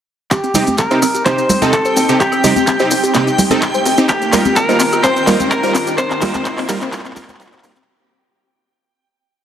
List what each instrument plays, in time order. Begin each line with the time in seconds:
0.31 synth arpeggio sound C4, ambient pad C4 D#4 G4, synth pluck G4, clean electric guitar G4, synth texture G5, kick, clap, closed hi-hat, riser, maracas
0.44 synth arpeggio sound C4, closed hi-hat, maracas
0.54 analog synth bass C2, supersaw synth C3 C4 D#4 G4, synth arpeggio sound G3, open hi-hat, high conga, high woodblock, maracas
0.67 synth arpeggio sound C4, closed hi-hat, high conga, maracas
0.78 synth arpeggio sound C4, clean electric guitar A#4, synth pluck A#4, kick, clap, closed hi-hat, maracas
0.91 supersaw synth C3 C4 D#4 G4, synth arpeggio sound C5, closed hi-hat, cowbell, maracas
1.02 analog synth bass C2, synth arpeggio sound C4, open hi-hat, high woodblock, maracas
1.14 synth arpeggio sound G4, closed hi-hat, maracas
1.26 supersaw synth C3 C4 D#4 G4, synth arpeggio sound A#3, clean electric guitar C5, synth pluck C5, kick, clap, closed hi-hat, maracas
1.38 synth arpeggio sound C4, closed hi-hat, maracas
1.49 analog synth bass C2, synth arpeggio sound G3, open hi-hat, high conga, high woodblock, maracas
1.62 supersaw synth C3 C4 D#4 A4, synth arpeggio sound C4, closed hi-hat, high conga, maracas
1.73 synth arpeggio sound C4, synth pluck A4, clean electric guitar A4, kick, clap, closed hi-hat, maracas
1.85 synth arpeggio sound C5, closed hi-hat, high woodblock, maracas
1.97 analog synth bass D#2, synth arpeggio sound C4, open hi-hat, maracas
2.09 supersaw synth C3 C4 D#4 G4, synth arpeggio sound C4, closed hi-hat, maracas
2.20 synth arpeggio sound C4, synth pluck G4, clean electric guitar G4, kick, clap, closed hi-hat, maracas
2.32 synth arpeggio sound C4, closed hi-hat, high woodblock, maracas
2.44 analog synth bass G1, supersaw synth C3 C4 D#4 G4, synth arpeggio sound G3, open hi-hat, high conga, maracas
2.56 synth arpeggio sound C4, closed hi-hat, high conga, maracas
2.67 synth arpeggio sound C4, kick, clap, closed hi-hat, maracas
2.79 supersaw synth C3 C4 D#4 G4, synth arpeggio sound C5, closed hi-hat, cowbell, high woodblock, maracas
2.91 analog synth bass C2, synth arpeggio sound C4, open hi-hat, maracas
3.04 synth arpeggio sound G4, closed hi-hat, maracas
3.14 supersaw synth C3 C4 D#4 G4, synth arpeggio sound A#3, kick, clap, closed hi-hat, high woodblock, maracas
3.27 synth arpeggio sound C4, closed hi-hat, maracas
3.38 analog synth bass C2, synth arpeggio sound G3, open hi-hat, high conga, maracas
3.50 supersaw synth C3 C4 D#4 A4, synth arpeggio sound C4, closed hi-hat, high conga, maracas
3.62 synth arpeggio sound C4, kick, clap, closed hi-hat, high woodblock, maracas
3.74 synth arpeggio sound C5, closed hi-hat, maracas
3.85 analog synth bass D2, synth arpeggio sound C4, open hi-hat, maracas
3.98 synth arpeggio sound C4, supersaw synth C4 D#4 G4, closed hi-hat, maracas
4.09 ambient pad D#3 D#4 F4 A#4, synth arpeggio sound C4, clean electric guitar G4, synth pluck G4, kick, clap, closed hi-hat, high woodblock, maracas
4.22 synth arpeggio sound C4, closed hi-hat, maracas
4.33 analog synth bass D#2, supersaw synth G3 A#3 D#4 F4 A#4, synth arpeggio sound G3, clap, open hi-hat, high conga, maracas
4.45 synth arpeggio sound C4, closed hi-hat, high conga, high woodblock, maracas
4.56 synth arpeggio sound C4, clean electric guitar A#4, synth pluck A#4, kick, clap, closed hi-hat, maracas
4.69 supersaw synth G3 A#3 D#4 F4 A#4, synth arpeggio sound C5, closed hi-hat, cowbell, maracas
4.80 analog synth bass D#2, synth arpeggio sound C4, clap, open hi-hat, maracas
4.92 synth arpeggio sound G4, closed hi-hat, high woodblock, maracas
5.04 synth arpeggio sound C4, clean electric guitar C5, synth pluck C5, kick, clap, closed hi-hat, maracas
5.16 synth arpeggio sound C4, closed hi-hat, maracas
5.27 analog synth bass D#2, supersaw synth G3 A#3 D#4 F4 A#4, synth arpeggio sound G3, clap, open hi-hat, high conga, maracas
5.39 synth arpeggio sound C4, closed hi-hat, high conga, high woodblock, maracas
5.51 synth arpeggio sound C4, clean electric guitar A#4, synth pluck A#4, kick, clap, closed hi-hat, maracas
5.63 supersaw synth G3 A#3 D#4 F4 A#4, synth arpeggio sound C5, closed hi-hat, maracas
5.75 analog synth bass G2, synth arpeggio sound C4, clap, open hi-hat, high woodblock, maracas
5.87 synth arpeggio sound G4, closed hi-hat, maracas
5.98 ambient pad A#3 C4, synth arpeggio sound C4, clean electric guitar C5, synth pluck C5, kick, clap, closed hi-hat, maracas
6.11 synth arpeggio sound C4, clap, closed hi-hat, maracas
6.22 analog synth bass F2, supersaw synth G3 A#3 D#4 F4 A#4, synth arpeggio sound G3, clap, open hi-hat, high conga, high woodblock, maracas
6.34 synth arpeggio sound C4, clap, closed hi-hat, high conga, maracas
6.45 synth arpeggio sound C4, kick, clap, closed hi-hat, maracas
6.58 synth arpeggio sound C4, clap, open hi-hat, cowbell, maracas
6.69 analog synth bass F2, supersaw synth G3 A#3 D#4 F4 A#4, synth arpeggio sound G3, clap, open hi-hat, high woodblock, maracas
6.81 synth arpeggio sound C4, clap, closed hi-hat, maracas
6.93 supersaw synth G3 A#3 D#4 F4 A#4, synth arpeggio sound C4, kick, clap, closed hi-hat, maracas
6.99 clap
7.05 synth arpeggio sound C4, clap, closed hi-hat, high woodblock, maracas
7.11 clap
7.16 analog synth bass F2, supersaw synth G3 A#3 D#4 F4 A#4, synth arpeggio sound C4, clap, open hi-hat, high conga, maracas
7.22 clap
7.29 synth arpeggio sound C4, clap, closed hi-hat, high conga, maracas
7.34 clap
7.40 supersaw synth G3 A#3 D#4 F4 A#4, synth arpeggio sound C4, kick, clap, closed hi-hat, maracas
7.46 clap
7.52 synth arpeggio sound C4, clap, closed hi-hat, high woodblock, maracas
7.58 clap
7.63 analog synth bass F2, supersaw synth G3 A#3 D#4 F4 A#4, synth arpeggio sound C4, clap, open hi-hat, maracas
7.70 clap
7.76 synth arpeggio sound C4, clap, closed hi-hat, maracas
7.82 clap